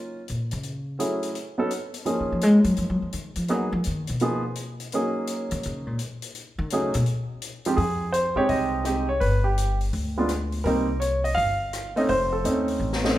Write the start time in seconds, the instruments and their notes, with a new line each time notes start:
Already playing: grand piano F#3 A#3 C#4 D#4 F4
0.28 upright bass A#2, closed hi-hat
0.51 upright bass C#3, closed hi-hat
0.63 closed hi-hat
0.99 grand piano F#3 A3 C#4 E4 G#4, closed hi-hat
1.23 closed hi-hat
1.35 closed hi-hat
1.58 grand piano F#3 B3 C#4 D#4 A4
1.71 closed hi-hat
1.94 closed hi-hat
2.05 grand piano F3 A#3 C#4 D#4 G#4, closed hi-hat
2.20 upright bass C#3
2.32 upright bass F3
2.41 upright bass G#3, closed hi-hat
2.64 upright bass F#3, closed hi-hat
2.77 upright bass F3, closed hi-hat
2.90 upright bass F#3
3.02 upright bass F3
3.13 upright bass D#3, closed hi-hat
3.36 upright bass F3, closed hi-hat
3.48 grand piano F#3 A#3 B3 D#4 G#4, upright bass F#3, closed hi-hat
3.72 upright bass F3
3.84 upright bass D#3, closed hi-hat
4.07 upright bass B2, closed hi-hat
4.20 grand piano F3 A#3 B3 D#4 G#4, closed hi-hat
4.56 closed hi-hat
4.80 closed hi-hat
4.92 grand piano F#3 A#3 C#4 D#4 G#4, closed hi-hat
5.27 closed hi-hat
5.51 upright bass D#3, closed hi-hat
5.63 upright bass C#3, closed hi-hat
5.87 upright bass A#2
5.99 closed hi-hat
6.22 closed hi-hat
6.35 closed hi-hat
6.58 upright bass D#3
6.70 upright bass C#3, grand piano F#3 A3 C#4 D#4 G#4, closed hi-hat
6.94 upright bass B2, closed hi-hat
7.06 closed hi-hat
7.42 closed hi-hat
7.65 grand piano F3 G#3 C4 D#4 G4, closed hi-hat
7.77 upright bass F2, grand piano G#4, kick, open hi-hat
8.12 grand piano C5, closed hi-hat
8.35 upright bass C3, grand piano G#3 C4 D#4 G4 C#5
8.49 upright bass C2, grand piano D#5, kick, open hi-hat
8.85 grand piano G#3 C4 D#4 G4, cross-stick, closed hi-hat
9.09 grand piano C#5
9.20 upright bass G1, grand piano B4, kick, open hi-hat
9.44 grand piano G4
9.58 closed hi-hat
9.81 open hi-hat
9.93 upright bass D2, kick, open hi-hat
10.18 grand piano G#3 B3 D4 F4
10.29 cross-stick, closed hi-hat
10.52 open hi-hat
10.64 upright bass C2, grand piano G3 A#3 C4 D#4 A#4, kick, open hi-hat
11.00 grand piano C#5, closed hi-hat
11.24 grand piano D#5, open hi-hat
11.35 upright bass G1, grand piano F5, kick, open hi-hat
11.73 cross-stick, closed hi-hat
11.96 grand piano A3 C4 C#4 D#4 D#5, open hi-hat
12.08 upright bass F1, grand piano C5, kick, open hi-hat
12.33 grand piano A4
12.44 upright bass D#2, grand piano A3 C4 C#4 D#4, closed hi-hat
12.68 open hi-hat
12.80 upright bass A1
12.93 snare
13.03 grand piano A3 C4 C#4 D#4, snare